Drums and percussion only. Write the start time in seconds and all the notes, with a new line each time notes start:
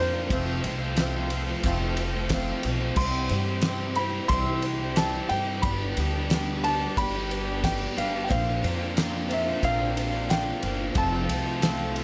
0.30 kick, ride
0.64 ride
0.96 snare, ride
1.30 ride
1.63 kick, ride
1.97 ride
2.29 kick, snare, ride
2.63 ride
2.96 kick, crash
3.29 ride
3.62 snare, ride
3.95 ride
4.29 kick, ride
4.62 ride
4.96 snare, ride
5.29 ride
5.63 kick, ride
5.97 ride
6.30 snare, ride
6.64 ride
6.97 kick, ride
7.31 ride
7.64 kick, snare, ride
7.98 ride
8.31 kick, ride
8.64 ride
8.97 snare, ride
9.31 ride
9.63 kick, ride
9.97 ride
10.30 snare, ride
10.63 ride
10.95 kick, ride
11.29 ride
11.62 snare, ride
11.96 ride